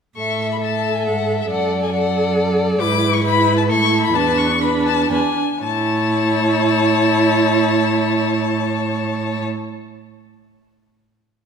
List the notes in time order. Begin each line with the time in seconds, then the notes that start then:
0.17 A2 A4 E5 C#6
0.51 B5
0.62 A4 E5 A5
0.96 G#5
1.07 G#2 F#5
1.41 E5
1.50 F#2 A4 D5 F#5
1.83 G#5
1.93 A4 D5 F#5
2.80 G#2 E4 B4 D6
3.13 C#6
3.24 E4 B4 B5
3.57 A5
3.69 A2 E4 A4 C#6
4.03 B5
4.14 E2 D4 B4 A5
4.38 C#6
4.61 D4 B4 B5
4.85 A5
5.10 E2 D4 B4 G#5
5.62 A2 E4 C#5 A5